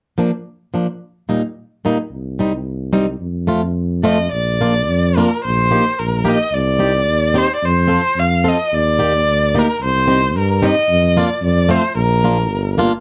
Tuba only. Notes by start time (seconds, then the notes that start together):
2.11 C2
3.20 F2
4.32 A#1
4.88 F2
5.44 A#1
5.99 A#1
6.53 C2
7.08 D#2
7.62 F2
8.16 F2
8.72 D#2
9.27 D2
9.81 C2
10.36 G2
10.89 F2
11.42 F2
11.96 A#1
12.50 G1